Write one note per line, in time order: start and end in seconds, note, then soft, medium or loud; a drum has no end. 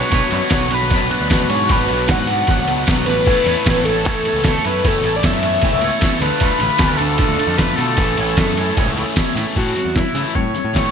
0.00 0.11 B2 loud
0.00 0.11 F#3 loud
0.00 0.13 B3 loud
0.00 0.12 D4 loud
0.00 0.13 F#4 loud
0.00 0.13 B4 loud
0.00 0.68 C#5 medium
0.11 0.21 B1 loud
0.11 0.32 B2 loud
0.11 0.32 F#3 loud
0.11 0.33 B3 medium
0.11 0.33 D4 loud
0.11 0.34 F#4 loud
0.11 0.33 B4 loud
0.11 kick loud
0.11 ride loud
0.31 0.41 F#2 loud
0.31 0.51 B2 medium
0.31 0.52 F#3 medium
0.31 0.53 B3 medium
0.31 0.53 D4 medium
0.31 0.54 F#4 loud
0.31 0.52 B4 loud
0.31 ride medium
0.50 0.92 B1 loud
0.50 0.71 B2 loud
0.50 0.71 F#3 loud
0.50 0.71 B3 loud
0.50 0.72 D4 medium
0.50 0.72 B4 loud
0.50 kick loud
0.50 snare loud
0.50 ride loud
0.50 tambourine loud
0.54 0.72 F#4 loud
0.71 0.89 B2 medium
0.71 0.90 F#3 medium
0.71 0.91 B3 loud
0.71 0.90 D4 medium
0.71 0.91 F#4 loud
0.71 0.93 B4 medium
0.71 0.91 B4 medium
0.71 ride medium
0.83 snare soft
0.90 0.99 F#2 medium
0.90 1.09 B2 loud
0.90 1.10 F#3 medium
0.90 1.12 B3 loud
0.90 1.11 D4 loud
0.90 1.12 F#4 loud
0.90 1.47 B4 medium
0.90 1.11 B4 loud
0.90 kick loud
0.90 ride medium
1.02 1.10 B1 medium
1.10 1.29 B2 medium
1.10 1.30 F#3 medium
1.10 1.31 B3 medium
1.10 1.31 D4 medium
1.10 1.31 F#4 loud
1.10 1.32 B4 medium
1.10 ride medium
1.20 1.46 D2 medium
1.30 1.49 B2 medium
1.30 1.49 F#3 loud
1.30 1.51 B3 loud
1.30 1.51 D4 loud
1.30 1.51 F#4 loud
1.30 1.52 B4 loud
1.30 kick loud
1.30 snare loud
1.30 ride medium
1.30 tambourine medium
1.50 1.67 G#2 medium
1.50 1.69 B2 medium
1.50 1.70 F#3 medium
1.50 1.71 B3 medium
1.50 1.71 D4 loud
1.50 1.71 F#4 medium
1.50 1.70 B4 medium
1.50 1.73 C#5 medium
1.50 ride medium
1.69 1.87 G#1 loud
1.69 1.89 B2 loud
1.69 1.90 F#3 medium
1.69 1.91 B3 medium
1.69 1.91 D4 medium
1.69 1.91 F#4 loud
1.69 1.91 B4 loud
1.69 2.13 B4 loud
1.69 kick loud
1.69 ride medium
1.88 2.07 B1 medium
1.88 2.09 B2 medium
1.88 2.10 F#3 medium
1.88 2.11 B3 medium
1.88 2.11 D4 medium
1.88 2.11 F#4 loud
1.88 2.10 B4 medium
1.88 ride medium
2.08 2.42 G#2 medium
2.08 2.28 B2 loud
2.08 2.29 F#3 loud
2.08 2.30 B3 loud
2.08 2.30 D4 loud
2.08 2.30 B4 loud
2.08 2.69 F#5 loud
2.08 kick loud
2.08 snare loud
2.08 ride loud
2.08 tambourine loud
2.12 2.31 F#4 loud
2.27 2.48 B2 medium
2.27 2.49 F#3 medium
2.27 2.51 B3 medium
2.27 2.50 D4 medium
2.27 2.51 B4 medium
2.27 ride medium
2.32 2.50 F#4 medium
2.47 2.60 G#1 loud
2.47 2.67 B2 loud
2.47 2.68 F#3 loud
2.47 2.69 B3 loud
2.47 2.70 F#4 loud
2.47 kick loud
2.47 ride medium
2.51 2.69 D4 loud
2.51 2.70 B4 loud
2.58 2.67 D2 medium
2.67 2.86 C#2 medium
2.67 2.88 B2 medium
2.67 2.88 F#3 medium
2.67 2.90 B3 medium
2.67 2.89 D4 medium
2.67 2.90 F#4 loud
2.67 2.90 B4 medium
2.67 ride medium
2.86 3.05 B1 medium
2.86 3.07 B2 medium
2.86 3.08 F#3 loud
2.86 kick loud
2.86 snare loud
2.86 ride medium
2.86 tambourine medium
2.90 3.09 B3 loud
2.90 3.08 D4 medium
2.90 3.09 F#4 loud
2.90 3.09 B4 loud
3.06 3.25 A1 medium
3.06 3.26 B2 medium
3.06 3.27 F#3 medium
3.06 3.28 B3 medium
3.06 3.27 D4 medium
3.06 3.27 F#4 loud
3.06 3.86 B4 medium
3.06 3.29 B4 medium
3.06 snare soft
3.06 ride medium
3.26 3.35 A1 loud
3.26 3.46 A2 medium
3.26 3.46 E3 medium
3.26 3.47 A3 medium
3.26 3.47 B3 medium
3.26 3.47 C#4 loud
3.26 3.48 E4 loud
3.26 3.48 A4 loud
3.26 3.48 C#5 loud
3.26 kick loud
3.26 crash loud
3.45 3.55 E2 loud
3.45 3.66 A2 medium
3.45 3.66 E3 medium
3.45 3.67 A3 medium
3.45 3.67 B3 medium
3.45 3.67 C#4 medium
3.45 3.68 E4 medium
3.45 3.69 A4 medium
3.45 3.69 C#5 loud
3.45 ride medium
3.66 4.06 A1 loud
3.66 3.85 A2 medium
3.66 3.85 E3 medium
3.66 3.87 A3 medium
3.66 3.86 B3 medium
3.66 3.87 C#4 loud
3.66 3.87 E4 medium
3.66 3.89 A4 loud
3.66 3.88 C#5 loud
3.66 kick loud
3.66 snare loud
3.66 ride loud
3.66 tambourine medium
3.85 4.05 A2 medium
3.85 4.05 E3 medium
3.85 4.06 A3 loud
3.85 4.06 B3 medium
3.85 4.06 C#4 medium
3.85 4.06 E4 loud
3.85 4.05 A4 medium
3.85 4.08 C#5 medium
3.85 ride medium
3.89 4.08 A4 medium
4.05 4.13 E2 loud
4.05 4.25 A2 loud
4.05 4.26 E3 loud
4.05 4.27 A3 loud
4.05 4.26 B3 medium
4.05 4.26 C#4 loud
4.05 4.27 E4 loud
4.05 4.68 A4 medium
4.05 4.27 A4 loud
4.05 4.27 C#5 loud
4.05 kick loud
4.05 ride loud
4.13 4.23 A1 medium
4.25 4.44 A2 medium
4.25 4.46 E3 medium
4.25 4.46 A3 medium
4.25 4.45 B3 medium
4.25 4.45 C#4 medium
4.25 4.46 E4 medium
4.25 4.47 A4 medium
4.25 4.47 C#5 medium
4.25 ride medium
4.33 4.59 C#2 medium
4.44 4.64 A2 medium
4.44 4.64 E3 medium
4.44 4.66 A3 loud
4.44 4.64 B3 loud
4.44 4.65 C#4 loud
4.44 4.65 E4 loud
4.44 4.66 A4 loud
4.44 kick loud
4.44 snare loud
4.44 ride medium
4.44 tambourine medium
4.48 4.66 C#5 loud
4.65 4.81 F#2 medium
4.65 4.82 A2 medium
4.65 4.83 E3 medium
4.65 4.84 A3 medium
4.65 4.83 B3 medium
4.65 4.84 C#4 medium
4.65 4.85 E4 medium
4.65 4.86 A4 medium
4.65 4.89 B4 medium
4.65 4.85 C#5 medium
4.65 ride medium
4.83 5.01 F#1 loud
4.83 5.02 A2 medium
4.83 5.03 E3 medium
4.83 5.04 A3 loud
4.83 5.04 B3 loud
4.83 5.03 C#4 loud
4.83 5.05 E4 loud
4.83 5.05 A4 loud
4.83 5.18 A4 loud
4.83 5.05 C#5 loud
4.83 kick loud
4.83 ride medium
5.02 5.20 A1 medium
5.02 5.23 A2 medium
5.02 5.23 E3 medium
5.02 5.25 A3 medium
5.02 5.23 B3 medium
5.02 5.24 C#4 medium
5.02 5.25 E4 medium
5.02 5.25 A4 medium
5.02 5.24 C#5 loud
5.02 ride medium
5.16 5.27 D5 medium
5.23 5.57 F#2 medium
5.23 5.42 A2 medium
5.23 5.43 E3 medium
5.23 5.44 A3 medium
5.23 5.43 B3 medium
5.23 5.44 C#4 loud
5.23 5.44 E4 loud
5.23 5.44 A4 loud
5.23 5.44 C#5 loud
5.23 5.84 E5 loud
5.23 kick loud
5.23 snare loud
5.23 ride loud
5.23 tambourine loud
5.43 5.62 A2 medium
5.43 5.63 E3 medium
5.43 5.64 A3 medium
5.43 5.61 B3 medium
5.43 5.63 C#4 medium
5.43 5.64 E4 loud
5.43 5.63 A4 loud
5.43 5.63 C#5 medium
5.43 ride medium
5.54 snare soft
5.61 5.74 F#1 loud
5.61 5.81 A2 medium
5.61 5.82 E3 loud
5.61 5.83 A3 medium
5.61 5.81 B3 medium
5.61 5.82 C#4 loud
5.61 5.83 E4 loud
5.61 5.83 A4 loud
5.61 5.83 C#5 loud
5.61 kick loud
5.61 ride medium
5.73 5.89 C#2 medium
5.82 6.02 A2 medium
5.82 6.02 E3 medium
5.82 6.03 A3 medium
5.82 6.00 B3 medium
5.82 6.03 C#4 medium
5.82 6.03 E4 loud
5.82 6.02 A4 medium
5.82 6.02 C#5 medium
5.82 ride medium
6.01 6.21 A2 medium
6.01 6.21 E3 loud
6.01 6.23 A3 loud
6.01 6.20 B3 loud
6.01 6.22 C#4 loud
6.01 6.22 E4 loud
6.01 6.21 A4 loud
6.01 6.21 C#5 loud
6.01 kick loud
6.01 snare loud
6.01 ride medium
6.01 tambourine medium
6.21 6.30 D2 medium
6.21 6.40 D3 loud
6.21 6.42 A3 loud
6.21 6.41 D4 loud
6.21 6.42 F4 loud
6.21 6.42 A4 loud
6.21 6.98 B4 loud
6.21 snare soft
6.21 ride medium
6.40 6.50 D2 loud
6.40 6.61 D3 medium
6.40 6.62 A3 loud
6.40 6.62 D4 loud
6.40 6.62 F4 loud
6.40 6.61 A4 loud
6.40 kick loud
6.40 ride loud
6.60 6.69 A1 medium
6.60 6.79 D3 medium
6.60 6.79 A3 medium
6.60 6.79 D4 medium
6.60 6.80 F4 medium
6.60 6.80 A4 loud
6.60 ride medium
6.78 7.19 D2 loud
6.78 6.99 D3 loud
6.78 7.00 A3 loud
6.78 7.00 D4 medium
6.78 7.01 F4 loud
6.78 7.01 A4 loud
6.78 kick loud
6.78 snare loud
6.78 ride loud
6.78 tambourine loud
6.97 7.16 D3 medium
6.97 7.19 A3 loud
6.97 7.59 A4 loud
6.97 ride medium
7.01 7.18 D4 medium
7.01 7.19 F4 loud
7.01 7.21 A4 medium
7.18 7.27 A1 loud
7.18 7.38 D3 medium
7.18 7.39 A3 medium
7.18 7.39 D4 loud
7.18 7.40 F4 loud
7.18 7.40 A4 loud
7.18 kick loud
7.18 ride loud
7.28 7.37 D2 loud
7.39 7.59 D3 medium
7.39 7.60 A3 medium
7.39 7.59 D4 loud
7.39 7.60 F4 medium
7.39 7.59 A4 medium
7.39 ride medium
7.47 7.73 F2 medium
7.57 7.79 D3 loud
7.57 7.80 A3 loud
7.57 7.80 D4 loud
7.57 7.80 F4 loud
7.57 7.80 A4 loud
7.57 7.77 B4 loud
7.57 kick loud
7.57 snare loud
7.57 ride loud
7.57 tambourine loud
7.76 7.95 B2 medium
7.76 7.98 D3 medium
7.76 9.15 A4 loud
7.76 snare soft
7.76 ride medium
7.80 7.99 A3 medium
7.80 7.98 D4 loud
7.80 7.99 F4 loud
7.80 7.98 A4 medium
7.97 8.14 A1 loud
7.97 8.18 A2 medium
7.97 8.18 E3 medium
7.97 8.18 A3 loud
7.97 8.19 C#4 loud
7.97 8.20 E4 loud
7.97 8.18 G#4 loud
7.97 kick loud
7.97 ride loud
8.17 8.35 A1 medium
8.17 8.37 A2 medium
8.17 8.37 E3 medium
8.17 8.38 A3 medium
8.17 8.38 C#4 medium
8.17 8.39 E4 medium
8.17 8.38 G#4 medium
8.17 ride medium
8.37 8.70 F#2 medium
8.37 8.57 A2 medium
8.37 8.58 E3 loud
8.37 8.58 A3 loud
8.37 8.59 C#4 loud
8.37 8.59 E4 loud
8.37 8.57 G#4 loud
8.37 kick loud
8.37 snare loud
8.37 ride medium
8.37 tambourine loud
8.57 8.75 A2 medium
8.57 8.76 E3 medium
8.57 8.77 A3 medium
8.57 8.77 C#4 medium
8.57 8.77 E4 loud
8.57 8.78 G#4 medium
8.57 ride medium
8.76 8.87 G#1 loud
8.76 8.95 A2 medium
8.76 8.97 E3 medium
8.76 8.96 A3 loud
8.76 8.97 C#4 loud
8.76 8.98 E4 loud
8.76 8.96 G#4 loud
8.76 kick loud
8.76 ride medium
8.86 9.03 C#2 medium
8.96 9.15 A2 medium
8.96 9.16 E3 medium
8.96 9.16 A3 medium
8.96 9.16 C#4 medium
8.96 9.17 E4 medium
8.96 9.16 G#4 medium
8.96 ride medium
9.16 9.35 A2 loud
9.16 9.36 E3 medium
9.16 9.36 A3 loud
9.16 9.36 C#4 medium
9.16 9.37 E4 loud
9.16 9.36 G#4 loud
9.16 kick loud
9.16 snare loud
9.16 ride medium
9.16 tambourine medium
9.36 9.44 A2 medium
9.36 9.55 A2 medium
9.36 9.55 E3 medium
9.36 9.55 A3 medium
9.36 9.55 C#4 loud
9.36 9.56 E4 medium
9.36 9.55 G#4 medium
9.36 snare soft
9.36 ride medium
9.56 9.73 A2 medium
9.56 9.76 E3 medium
9.56 9.76 A3 medium
9.56 9.76 C#4 medium
9.56 9.76 E4 medium
9.56 9.93 F#4 medium
9.56 kick medium
9.56 crash medium
9.76 muted distorted electric guitar stroke soft
9.76 closed hi-hat medium
9.85 10.02 E2 medium
9.96 10.36 E4 medium
9.96 muted distorted electric guitar stroke soft
9.96 kick medium
9.96 snare medium
10.15 10.23 C#3 medium
10.15 10.34 E3 medium
10.15 10.34 A3 medium
10.15 10.34 C#4 medium
10.15 10.34 E4 medium
10.15 closed hi-hat medium
10.35 10.52 A2 medium
10.35 10.91 C#5 loud
10.35 muted distorted electric guitar stroke soft
10.35 kick medium
10.54 muted distorted electric guitar stroke soft
10.54 closed hi-hat medium
10.64 10.90 A2 medium
10.73 10.91 E3 medium
10.73 10.91 A3 medium
10.73 10.91 C#4 medium
10.73 10.91 E4 medium
10.73 kick medium
10.73 snare medium